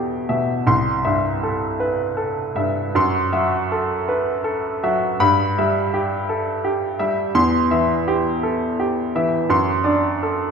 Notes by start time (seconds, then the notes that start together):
Already playing: E2 B2 G4 A4 E5 B5
0.29 B2 E5
0.67 C2 C6
1.05 G2 E5
1.43 A4
1.80 B4
2.17 A4
2.55 G2 E5
2.95 F#2 C6
3.33 F#3 E5
3.72 A4
4.08 B4
4.44 A4
4.83 F#3 E5
5.20 G2 B5
5.58 G3 E5
5.94 G4
6.29 A4
6.64 G4
6.99 G3 E5
7.35 E2 C6
7.71 E3 E5
8.08 G4
8.43 A4
8.80 G4
9.15 E3 E5
9.50 F#2 C6
9.84 D4 D5
10.23 A4